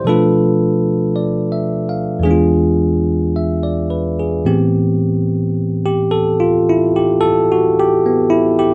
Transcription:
0.04 2.23 B2 soft
0.04 2.23 F3 soft
0.04 2.24 A3 soft
0.04 2.24 D4 soft
0.04 2.20 A4 medium
0.09 2.21 F4 soft
0.09 2.25 B4 soft
1.16 1.84 D5 soft
1.52 2.08 E5 soft
1.89 2.45 F5 soft
2.19 4.43 E2 soft
2.19 4.45 E3 soft
2.23 4.46 G#3 soft
2.23 4.42 B3 soft
2.23 4.42 D4 soft
2.23 3.30 G#4 medium
2.31 4.49 F4 soft
3.36 3.87 E5 soft
3.63 4.10 D5 soft
3.90 4.24 B4 soft
4.19 4.57 G#4 soft
4.45 8.74 A2 soft
4.45 8.74 E3 soft
4.45 8.05 B3 soft
4.45 8.74 C4 soft
4.45 5.84 G4 medium
5.86 6.23 G4 medium
6.11 6.37 A4 medium
6.40 6.60 F4 medium
6.69 7.02 E4 medium
6.96 7.33 G4 medium
7.21 7.46 A4 medium
7.52 7.71 F#4 medium
7.80 8.11 G4 medium
8.06 8.42 B3 medium
8.30 8.54 E4 medium
8.59 8.74 G4 medium

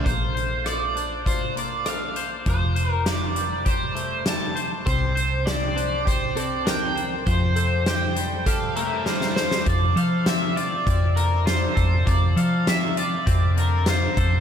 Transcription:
0.04 2.42 A#1 medium
0.04 1.55 A#3 soft
0.04 0.67 C5 medium
0.04 kick medium
0.04 closed hi-hat medium
0.35 1.89 C5 medium
0.35 closed hi-hat soft
0.64 1.24 F4 soft
0.64 1.22 D5 medium
0.64 cross-stick medium
0.64 closed hi-hat medium
0.96 1.85 D4 soft
0.96 closed hi-hat soft
1.26 2.46 F4 medium
1.26 1.54 C5 medium
1.26 kick medium
1.26 closed hi-hat medium
1.56 2.46 A#3 soft
1.56 1.88 D5 medium
1.56 closed hi-hat soft
1.86 2.46 D4 medium
1.86 2.29 F5 medium
1.86 cross-stick medium
1.86 closed hi-hat medium
2.16 2.75 C5 medium
2.16 closed hi-hat medium
2.46 4.82 F1 medium
2.46 3.96 F3 medium
2.46 2.91 C5 medium
2.46 kick medium
2.46 closed hi-hat medium
2.76 4.55 C5 medium
2.76 closed hi-hat soft
2.91 3.03 A#4 medium
3.05 3.65 G4 medium
3.05 3.67 D5 medium
3.05 snare medium
3.05 closed hi-hat medium
3.35 4.25 G3 medium
3.35 closed hi-hat medium
3.65 5.45 G4 medium
3.65 4.23 C5 medium
3.65 kick medium
3.65 closed hi-hat medium
3.95 4.86 A3 medium
3.95 closed hi-hat soft
4.26 5.76 G3 medium
4.26 4.70 A5 medium
4.26 snare medium
4.26 closed hi-hat medium
4.56 5.15 C5 medium
4.56 closed hi-hat soft
4.86 7.23 C2 medium
4.86 6.35 C4 medium
4.86 5.46 C5 medium
4.86 5.48 C5 medium
4.86 kick medium
4.86 closed hi-hat medium
5.15 6.68 C5 medium
5.15 closed hi-hat soft
5.45 6.04 G4 medium
5.45 5.76 D5 medium
5.45 6.08 D5 medium
5.45 snare medium
5.45 closed hi-hat medium
5.76 6.64 D4 medium
5.76 6.66 C5 medium
5.76 closed hi-hat soft
6.05 7.26 G4 medium
6.05 6.38 C5 medium
6.05 kick medium
6.05 closed hi-hat medium
6.35 8.76 C4 medium
6.35 6.67 A4 medium
6.35 closed hi-hat soft
6.39 6.69 D5 medium
6.65 7.26 D4 medium
6.65 7.26 A#4 medium
6.65 7.09 G5 medium
6.65 snare medium
6.65 closed hi-hat medium
6.96 7.56 C5 medium
6.96 closed hi-hat soft
7.26 9.63 F2 medium
7.26 8.77 F3 medium
7.26 7.55 C5 medium
7.26 7.89 C5 medium
7.26 kick medium
7.26 closed hi-hat medium
7.56 7.86 A4 medium
7.56 9.07 C5 medium
7.56 closed hi-hat medium
7.86 8.45 G4 medium
7.86 8.46 C5 medium
7.86 8.47 G5 medium
7.86 snare medium
7.86 closed hi-hat medium
8.16 9.05 G3 medium
8.16 closed hi-hat medium
8.46 9.67 G4 medium
8.46 8.75 A4 medium
8.46 8.86 F5 medium
8.46 kick medium
8.46 closed hi-hat medium
8.76 9.66 A3 medium
8.76 9.35 A4 medium
8.76 9.06 A#4 medium
8.76 closed hi-hat medium
8.87 9.07 E5 medium
9.06 9.67 G3 medium
9.06 9.68 C5 medium
9.06 9.49 F5 medium
9.06 snare soft
9.21 snare soft
9.36 9.66 C5 medium
9.36 snare medium
9.51 snare medium
9.65 9.93 F2 medium
9.65 12.05 F3 soft
9.65 9.97 D5 medium
9.65 kick medium
9.65 closed hi-hat medium
9.96 10.75 F3 medium
9.96 11.75 A4 medium
9.96 10.27 F5 medium
9.96 closed hi-hat soft
10.26 10.86 C4 medium
10.26 10.57 E5 medium
10.26 snare medium
10.26 closed hi-hat medium
10.57 11.45 F4 medium
10.57 11.19 D5 medium
10.57 closed hi-hat soft
10.87 11.66 F2 medium
10.87 12.67 C4 medium
10.87 kick medium
10.87 closed hi-hat medium
11.16 12.66 D3 soft
11.16 11.46 A#4 medium
11.16 closed hi-hat soft
11.46 12.96 F4 medium
11.46 12.09 C5 medium
11.46 snare loud
11.46 closed hi-hat medium
11.75 12.03 F2 medium
11.75 12.36 A4 medium
11.75 kick medium
11.75 closed hi-hat soft
12.06 12.33 F2 medium
12.06 14.40 F3 medium
12.06 12.37 D5 medium
12.06 kick medium
12.06 closed hi-hat medium
12.36 13.16 F3 medium
12.36 14.17 A4 medium
12.36 12.68 F5 medium
12.36 closed hi-hat medium
12.67 13.26 C4 medium
12.67 12.98 E5 medium
12.67 snare medium
12.67 closed hi-hat medium
12.97 13.87 F4 medium
12.97 13.59 D5 medium
12.97 closed hi-hat medium
13.26 14.06 F2 medium
13.26 14.40 C4 medium
13.26 kick medium
13.26 closed hi-hat medium
13.57 14.40 D3 soft
13.57 13.88 A#4 medium
13.57 closed hi-hat soft
13.86 14.40 F4 medium
13.86 14.40 C5 medium
13.86 snare medium
13.86 closed hi-hat medium
14.17 14.40 F2 medium
14.17 14.40 A4 medium
14.17 kick medium
14.17 closed hi-hat medium

